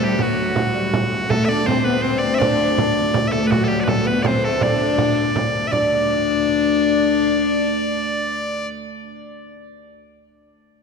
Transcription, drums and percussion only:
0.19 frame drum
0.56 frame drum
0.74 frame drum
0.93 frame drum
1.12 frame drum
1.30 frame drum
1.68 frame drum
2.41 frame drum
2.78 frame drum
3.14 frame drum
3.52 frame drum
3.88 frame drum
4.25 frame drum
4.61 frame drum
4.98 frame drum
5.36 frame drum
5.72 frame drum

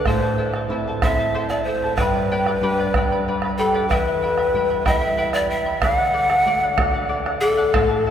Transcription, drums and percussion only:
0.06 bombo rim, bombo low
0.22 bombo rim
0.38 bombo rim
0.54 bombo rim
1.02 bombo rim, bombo low
1.34 bombo rim
1.50 bombo rim
1.98 bombo rim, bombo low
2.31 bombo rim
2.46 bombo rim
2.78 bombo rim
2.94 bombo rim, bombo low
3.27 bombo rim
3.42 bombo rim
3.75 bombo rim
3.91 bombo rim, bombo low
4.07 bombo rim
4.22 bombo rim
4.38 bombo rim
4.86 bombo rim, bombo low
5.19 bombo rim
5.33 bombo rim
5.82 bombo rim, bombo low
5.98 bombo rim
6.14 bombo rim
6.30 bombo rim
6.78 bombo rim, bombo low
7.11 bombo rim
7.26 bombo rim
7.74 bombo rim, bombo low
7.90 bombo rim
8.06 bombo rim

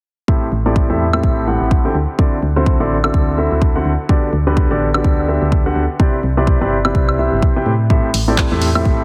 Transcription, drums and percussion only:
0.28 kick
0.76 kick
1.13 high woodblock
1.23 kick
1.71 kick
2.19 kick
2.66 kick
3.04 high woodblock
3.14 kick
3.62 kick
4.09 kick
4.57 kick
4.94 high woodblock
5.04 kick
5.52 kick
6.00 kick
6.47 kick
6.85 high woodblock
6.95 kick
7.09 high woodblock
7.42 kick
7.90 kick
8.14 open hi-hat
8.38 kick, clap
8.62 open hi-hat
8.75 high woodblock
8.85 kick

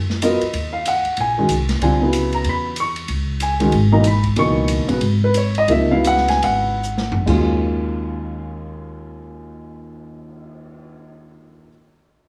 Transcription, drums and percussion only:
0.10 snare
0.22 hi-hat pedal, ride
0.41 ride
0.53 ride
0.85 hi-hat pedal, ride
1.05 ride
1.17 ride
1.49 hi-hat pedal, ride
1.69 snare, ride
1.82 ride
2.13 hi-hat pedal, ride
2.32 ride
2.44 ride
2.76 hi-hat pedal, ride
2.96 ride
3.08 ride
3.40 hi-hat pedal, ride
3.60 ride
3.72 ride
4.04 hi-hat pedal, ride
4.24 kick, ride
4.36 ride
4.68 hi-hat pedal, ride
4.89 ride
5.01 ride
5.34 hi-hat pedal, ride
5.55 ride
5.68 ride
6.04 hi-hat pedal, ride
6.17 snare
6.28 snare, ride
6.42 ride
6.83 hi-hat pedal
6.98 snare
7.12 floor tom
7.27 kick, crash
7.56 cymbal swell

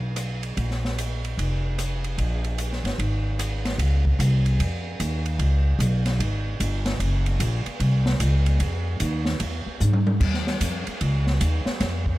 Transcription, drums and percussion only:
0.16 cross-stick, hi-hat pedal, ride
0.43 ride
0.57 ride
0.71 snare
0.85 snare
0.98 hi-hat pedal, ride
1.25 ride
1.39 ride
1.79 cross-stick, hi-hat pedal, ride
2.04 ride
2.18 ride
2.44 ride
2.58 hi-hat pedal, ride
2.73 snare
2.85 snare, ride
3.00 ride
3.39 cross-stick, hi-hat pedal, ride
3.65 snare, ride
3.79 ride
4.05 kick
4.20 hi-hat pedal, ride
4.46 ride
4.60 ride
5.00 hi-hat pedal, ride
5.26 ride
5.39 ride
5.80 hi-hat pedal, ride
6.06 snare, ride
6.20 ride
6.60 hi-hat pedal, ride
6.86 snare, ride
7.00 ride
7.26 ride
7.40 hi-hat pedal, ride
7.66 ride
7.80 ride
8.06 snare
8.20 hi-hat pedal, ride
8.46 ride
8.60 ride
9.00 hi-hat pedal, ride
9.25 snare
9.40 ride
9.80 hi-hat pedal, high tom
9.93 high tom
10.07 high tom
10.21 kick, crash
10.34 snare
10.47 snare
10.61 hi-hat pedal, ride
10.87 ride
11.01 ride
11.27 snare
11.41 hi-hat pedal, ride
11.66 snare
11.80 snare, ride
12.06 kick

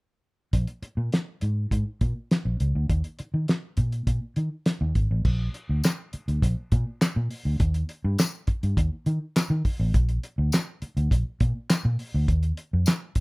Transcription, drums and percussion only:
0.53 kick, closed hi-hat
0.67 closed hi-hat
0.83 closed hi-hat
1.12 snare, closed hi-hat
1.41 closed hi-hat
1.71 kick, closed hi-hat
2.01 kick, closed hi-hat
2.31 snare, closed hi-hat
2.60 closed hi-hat
2.90 kick, closed hi-hat
3.04 closed hi-hat
3.19 closed hi-hat
3.48 snare, closed hi-hat
3.77 kick, closed hi-hat
3.92 closed hi-hat
4.07 kick, closed hi-hat
4.36 closed hi-hat
4.66 snare, closed hi-hat
4.95 kick, closed hi-hat
5.25 kick, crash
5.54 closed hi-hat
5.84 snare, clap, closed hi-hat, tambourine
6.13 closed hi-hat
6.28 closed hi-hat
6.42 kick, closed hi-hat
6.72 kick, closed hi-hat
7.01 snare, clap, closed hi-hat, tambourine
7.31 open hi-hat
7.60 kick, closed hi-hat
7.74 closed hi-hat
7.89 closed hi-hat
8.18 snare, clap, closed hi-hat, tambourine
8.47 kick, closed hi-hat
8.63 closed hi-hat
8.77 kick, closed hi-hat
9.06 closed hi-hat
9.36 snare, clap, closed hi-hat, tambourine
9.65 kick, open hi-hat
9.94 kick, closed hi-hat
10.09 closed hi-hat
10.23 closed hi-hat
10.52 snare, clap, closed hi-hat, tambourine
10.82 closed hi-hat
10.97 closed hi-hat
11.11 kick, closed hi-hat
11.40 kick, closed hi-hat
11.70 snare, clap, closed hi-hat, tambourine
11.99 open hi-hat
12.28 kick, closed hi-hat
12.43 closed hi-hat
12.57 closed hi-hat
12.86 snare, clap, closed hi-hat, tambourine
13.15 kick, closed hi-hat

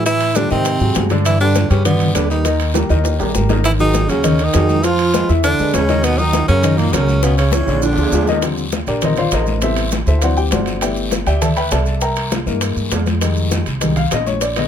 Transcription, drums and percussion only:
0.06 high bongo, high timbale, long guiro, maracas
0.20 high bongo, high conga, high timbale, maracas
0.35 high bongo, high conga, high timbale, low timbale, short guiro, maracas
0.50 high bongo, high conga, short guiro, maracas
0.65 high bongo, high conga, high timbale, long guiro, maracas
0.80 high conga, maracas
0.95 high bongo, low bongo, high conga, high timbale, low timbale, short guiro, maracas
1.10 high bongo, high conga, high timbale, short guiro, maracas
1.25 high bongo, high timbale, long guiro, maracas
1.40 high conga, maracas
1.55 high bongo, high conga, high timbale, low timbale, short guiro, maracas
1.71 high conga, high timbale, short guiro, maracas
1.85 high bongo, high conga, low conga, high timbale, long guiro, maracas
2.00 high conga, low conga, high timbale, maracas
2.15 high bongo, low bongo, high timbale, low timbale, short guiro, maracas
2.30 short guiro, maracas
2.45 high bongo, high conga, high timbale, long guiro, maracas
2.60 high bongo, high conga, high timbale, maracas
2.74 high bongo, high conga, high timbale, short guiro, maracas
2.89 high bongo, high conga, high timbale, short guiro, maracas
3.04 high bongo, high conga, high timbale, long guiro, maracas
3.19 high conga, low timbale, maracas
3.35 high bongo, low bongo, high conga, short guiro, maracas
3.49 high bongo, high conga, low timbale, short guiro, maracas
3.64 high bongo, high timbale, long guiro, maracas
3.79 high conga, maracas
3.93 high bongo, high conga, high timbale, low timbale, short guiro, maracas
4.09 high timbale, short guiro, maracas
4.24 high bongo, high conga, low conga, high timbale, long guiro, maracas
4.39 high timbale, maracas
4.54 high bongo, low bongo, high conga, high timbale, low timbale, short guiro, maracas
4.69 high conga, short guiro, maracas
4.83 high bongo, high conga, high timbale, long guiro, maracas
4.99 high bongo, high conga, high timbale, maracas
5.14 high bongo, high conga, high timbale, low timbale, short guiro, maracas
5.29 high bongo, high conga, short guiro, maracas
5.44 high bongo, high conga, high timbale, long guiro, maracas
5.59 high conga, maracas
5.73 high bongo, low bongo, high conga, high timbale, low timbale, short guiro, maracas
5.89 high bongo, high conga, high timbale, short guiro, maracas
6.04 high bongo, high conga, high timbale, long guiro, maracas
6.18 high conga, maracas
6.33 high bongo, high conga, high timbale, low timbale, short guiro, maracas
6.48 high conga, high timbale, short guiro, maracas
6.63 high bongo, high conga, low conga, high timbale, long guiro, maracas
6.77 high conga, low conga, high timbale, maracas
6.92 high bongo, low bongo, high conga, high timbale, low timbale, short guiro, maracas
7.07 high conga, short guiro, maracas
7.23 high bongo, high timbale, long guiro, maracas
7.37 high bongo, high conga, high timbale, maracas
7.52 high bongo, high conga, high timbale, short guiro, maracas
7.63 high conga, high timbale
7.68 short guiro, maracas
7.73 high timbale
7.82 high conga, high timbale, long guiro, maracas
7.93 low timbale
7.98 low bongo, high conga, maracas
8.03 low timbale
8.12 low bongo, high conga, low timbale, short guiro, maracas
8.23 low timbale
8.27 low bongo, high conga, short guiro, maracas
8.32 low timbale
8.42 high bongo, high conga, high timbale, long guiro, maracas
8.57 high conga, maracas
8.72 high bongo, high conga, high timbale, low timbale, short guiro, maracas
8.87 high conga, high timbale, short guiro, maracas
9.01 high bongo, high conga, low conga, high timbale, long guiro, maracas
9.16 high conga, low conga, high timbale, maracas
9.31 high bongo, low bongo, high timbale, low timbale, short guiro, maracas
9.47 high conga, short guiro, maracas
9.61 high bongo, high conga, high timbale, long guiro, maracas
9.76 high bongo, high conga, high timbale, maracas
9.91 high bongo, high conga, high timbale, low timbale, short guiro, maracas
10.07 high bongo, high conga, short guiro, maracas
10.22 high bongo, high conga, high timbale, long guiro, maracas
10.37 high conga, maracas
10.51 high bongo, low bongo, high conga, high timbale, low timbale, short guiro, maracas
10.66 high bongo, high conga, high timbale, short guiro, maracas
10.81 high bongo, high conga, high timbale, long guiro, maracas
10.97 high conga, maracas
11.11 high bongo, high conga, high timbale, low timbale, short guiro, maracas
11.27 high conga, high timbale, short guiro, maracas
11.42 high bongo, high conga, low conga, high timbale, long guiro, maracas
11.56 high timbale, maracas
11.71 high bongo, low bongo, high conga, high timbale, low timbale, short guiro, maracas
11.86 short guiro, maracas
12.01 high bongo, high conga, high timbale, long guiro, maracas
12.16 high bongo, high conga, high timbale, maracas
12.32 high bongo, high conga, high timbale, low timbale, short guiro, maracas
12.47 high bongo, high conga, short guiro, maracas
12.61 high bongo, high conga, high timbale, long guiro, maracas
12.77 high conga, maracas
12.91 high bongo, low bongo, high conga, high timbale, low timbale, short guiro, maracas
13.06 high bongo, high conga, high timbale, short guiro, maracas
13.21 high bongo, high timbale, long guiro, maracas
13.36 high conga, maracas
13.51 high bongo, high conga, high timbale, low timbale, short guiro, maracas
13.66 high conga, high timbale, short guiro, maracas
13.81 high bongo, high conga, low conga, high timbale, long guiro, maracas
13.96 high conga, low conga, high timbale, maracas
14.11 high bongo, low bongo, high conga, high timbale, low timbale, short guiro, maracas
14.26 high conga, short guiro, maracas
14.41 high bongo, high conga, high timbale, long guiro, maracas
14.56 high bongo, high conga, high timbale, maracas

